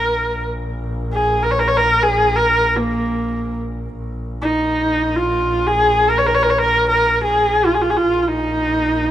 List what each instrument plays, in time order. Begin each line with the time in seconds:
Already playing: double bass A#1, horsehead fiddle A#4
1.13 horsehead fiddle G#4
1.43 horsehead fiddle A#4
1.51 horsehead fiddle C#5
1.59 horsehead fiddle A#4
1.68 horsehead fiddle C#5
1.77 horsehead fiddle A#4
2.03 horsehead fiddle G#4
2.36 horsehead fiddle A#4
2.77 horsehead fiddle A#3
3.96 double bass A#1
4.42 horsehead fiddle D#4
5.17 horsehead fiddle F4
5.67 horsehead fiddle G#4
6.10 horsehead fiddle A#4
6.18 horsehead fiddle C#5
6.26 horsehead fiddle A#4
6.34 horsehead fiddle C#5
6.43 horsehead fiddle A#4
6.50 horsehead fiddle C#5
6.58 horsehead fiddle A#4
6.89 horsehead fiddle A#4
7.24 horsehead fiddle G#4
7.66 horsehead fiddle F4
7.75 horsehead fiddle G#4
7.82 horsehead fiddle F4
7.90 horsehead fiddle G#4
7.97 horsehead fiddle F4
8.04 double bass A#1
8.22 horsehead fiddle F4
8.27 horsehead fiddle D#4